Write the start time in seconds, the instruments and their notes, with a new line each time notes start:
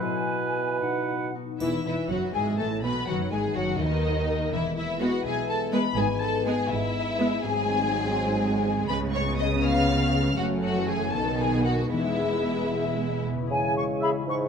Already playing: harp E4
0.00 bassoon B2, harp B2, clarinet E4, oboe B4, flute section G#5
0.29 harp B3
0.55 harp E4 G#4
0.81 harp B2, clarinet D#4, flute section F#5
1.09 harp B3
1.35 harp D#4 F#4
1.60 double bass section E1, cello section E2, french horn section E3, harp E3, viola section E3, violin section E4 E5, triangle
1.84 double bass section E1, cello section E2, french horn section E3, viola section E3, harp E4, violin section E4 E5
2.09 double bass section F#1, cello section F#2, french horn section F#3, viola section F#3, violin section F#4 F#5, harp B4
2.33 double bass section G#1, cello section G#2, french horn section G#3, viola section G#3, violin section G#4 G#5, harp E5
2.58 double bass section A1, cello section A2, french horn section A3, viola section A3, violin section A4 A5, harp G#5
2.82 double bass section B1, cello section B2, viola section B3, french horn section B3, violin section B4 B5, harp B4
3.07 double bass section F#1, cello section F#2, harp D#3, french horn section F#3, viola section F#3, violin section F#4 F#5
3.31 double bass section G#1, cello section G#2, viola section G#3, french horn section G#3, harp B3, violin section G#4 G#5
3.55 double bass section F#1, cello section F#2, french horn section F#3, viola section F#3, violin section F#4 F#5, harp A4
3.78 double bass section D#2, cello section D#2, french horn section D#3, viola section D#3, violin section D#4 D#5, harp B4
4.05 harp F#5
4.29 harp A4
4.52 double bass section E1, cello section E2, harp E3, french horn section G#3 B3, violin section E4 E5
4.77 violin section E4 E5, harp E4
5.01 viola section G#3 B3, violin section F#4 F#5, harp B4
5.25 double bass section B1, cello section B2, violin section G#4 G#5, harp E5
5.49 violin section A4 A5
5.73 viola section G#3 B3, violin section B4 B5, harp B4
5.97 double bass section G#1, cello section G#2, harp G#2, violin section G#4 G#5
6.21 harp B3, violin section A4 A5
6.46 viola section G#3 B3, violin section G#4 G#5, harp G#4
6.70 double bass section G#1, cello section G#2, violin section E4 E5, harp B4
6.95 harp E5
7.19 viola section G#3 B3, harp G#4
7.43 double bass section G#1, cello section G#2, harp G#2, french horn section F#3 C4, viola section G#3 C4, violin section G#4 G#5
7.68 harp C4
7.91 harp G#4
8.16 harp C5
8.41 harp D#5
8.65 harp G#4
8.88 double bass section C#2, cello section C#3, harp C#3, french horn section B3 C#4, viola section B3, violin section B4 B5
9.12 harp B3, violin section C#5 C#6
9.37 harp G#4, violin section D#5 D#6
9.62 harp B4, violin section F5 F6
9.87 harp C#5
10.13 harp G#4
10.37 double bass section F#1, cello section F#2, harp F#2, viola section F#3 A3, french horn section A3 C#4, violin section F#4 F#5
10.63 harp A3, violin section F#4 F#5
10.75 viola section E3
10.88 harp C#4 F#4, violin section G#4 G#5
11.13 double bass section B1, cello section B2, harp B2, viola section D#3 B3, french horn section B3 D#4, violin section A4 A5
11.39 harp B3, violin section G#4 G#5
11.65 harp D#4 F#4, violin section F#4 F#5
11.92 double bass section E1, cello section E2, harp E3, viola section G#3 B3, french horn section B3 G#4, violin section E4 E5
12.19 harp E4
12.46 harp B4
12.72 harp E5
12.98 harp G#5
13.25 harp B4
13.33 harp C#3
13.38 harp C#4
13.42 harp E4
13.47 harp G#4, flute section G#5
13.51 bassoon C#3, french horn section G#3 E4
13.77 flute section C#6
14.01 clarinet G#4, oboe E5, flute section B5
14.27 bassoon G#2, french horn section G#3 E4, flute section C#6